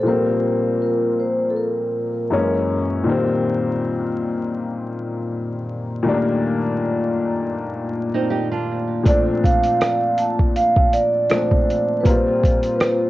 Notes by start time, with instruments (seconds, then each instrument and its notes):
0.03 upright piano A#2 F3 G3, vibraphone A#4
0.07 upright piano A#3 C4
0.82 vibraphone A#4
1.20 vibraphone C5
1.50 vibraphone A4
1.56 vibraphone A#4
2.30 upright piano F#2 E3 G#3 A#3 C#4
3.04 upright piano A#2 D#3 G3
3.08 upright piano A#3 C4
6.03 upright piano A#2 D#3 G3
6.07 upright piano A3 D4
6.14 upright piano A#3
8.14 nylon-string guitar C4 D#4
8.30 nylon-string guitar D#4 G4
8.52 nylon-string guitar D4 F4
9.03 upright piano A#2 F3 A3, vibraphone D5, kick, closed hi-hat
9.07 upright piano C4 D4
9.44 vibraphone F5, kick, closed hi-hat
9.63 closed hi-hat
9.81 cross-stick, closed hi-hat
10.18 vibraphone A5, closed hi-hat
10.39 kick
10.56 vibraphone F5, closed hi-hat
10.76 kick
10.93 vibraphone D5, closed hi-hat
11.30 upright piano A#2 F3 A3 C4 D4, cross-stick, closed hi-hat
11.51 kick
11.70 closed hi-hat
12.01 upright piano A#2, vibraphone B4
12.05 upright piano G3 A#3 C4, vibraphone C5, kick, closed hi-hat
12.09 upright piano F4
12.44 kick, closed hi-hat
12.63 closed hi-hat
12.75 vibraphone B4
12.80 vibraphone C5, cross-stick, closed hi-hat